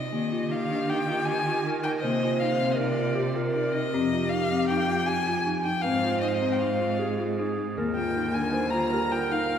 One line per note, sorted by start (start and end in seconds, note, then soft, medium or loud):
0.00 0.53 D#5 medium
0.12 2.05 D#3 medium
0.12 0.27 A#3 medium
0.12 1.62 G4 medium
0.32 0.47 F4 medium
0.51 0.66 D#4 medium
0.51 0.92 F5 medium
0.71 0.85 D4 medium
0.90 1.05 D#4 medium
0.90 1.27 G5 medium
1.08 1.23 F4 medium
1.25 1.42 G4 medium
1.25 1.64 G#5 medium
1.47 1.62 F4 medium
1.66 1.81 D#4 medium
1.66 2.04 A#4 medium
1.84 2.00 D#4 medium
1.84 1.92 G5 medium
2.00 3.96 C3 medium
2.00 2.78 C5 medium
2.00 2.41 D#5 medium
2.04 2.19 A#3 medium
2.23 2.38 F4 medium
2.40 2.57 D#4 medium
2.40 2.73 F5 medium
2.61 2.75 C4 medium
2.72 2.79 D#5 medium
2.76 2.94 D#4 medium
2.76 3.16 A#4 medium
2.76 3.35 D5 medium
2.99 3.13 F4 medium
3.15 3.37 G4 medium
3.15 3.32 G4 medium
3.35 3.51 F4 medium
3.35 3.92 A#4 medium
3.52 3.70 D#4 medium
3.52 3.74 D5 medium
3.73 3.89 D#4 medium
3.73 4.30 D#5 medium
3.93 5.86 F2 medium
3.93 4.08 C4 medium
3.93 5.52 G4 loud
4.13 4.28 F4 medium
4.29 4.68 F5 medium
4.33 4.47 D#4 medium
4.52 4.66 C4 medium
4.69 4.85 D#4 medium
4.69 5.08 G5 medium
4.90 5.04 F4 medium
5.06 5.22 G4 medium
5.06 5.45 G#5 loud
5.28 5.42 F4 medium
5.46 5.60 D#4 medium
5.64 5.80 D#4 medium
5.64 5.83 G5 medium
5.82 7.79 G#2 medium
5.82 5.99 C4 medium
5.82 6.95 C5 loud
5.82 6.20 F5 loud
6.04 6.18 F4 medium
6.20 6.38 D#4 medium
6.20 6.30 D#5 medium
6.28 6.36 F5 medium
6.35 6.54 D#5 medium
6.42 6.56 C4 medium
6.52 6.60 G5 soft
6.59 6.76 D#4 medium
6.59 7.17 F5 medium
6.80 6.95 F4 medium
6.99 7.14 G4 medium
6.99 7.35 G#4 medium
7.19 7.34 F4 medium
7.39 7.54 D#4 medium
7.39 7.74 G#4 medium
7.58 7.72 D#4 medium
7.77 9.59 D#2 medium
7.77 9.59 D3 medium
7.77 9.59 G3 medium
7.77 7.92 A#3 medium
7.77 9.59 F4 medium
7.77 8.55 A#4 medium
7.96 8.11 F4 medium
7.96 8.35 G5 medium
8.16 8.31 D#4 medium
8.34 8.50 D4 medium
8.34 8.72 G#5 medium
8.54 8.69 D#4 medium
8.54 8.94 C5 medium
8.71 8.88 F4 medium
8.71 9.13 A#5 medium
8.92 9.08 G4 medium
8.92 9.59 A#4 medium
9.12 9.27 F4 medium
9.12 9.33 G5 medium
9.31 9.46 D#4 medium
9.31 9.59 F5 medium
9.51 9.59 D#4 medium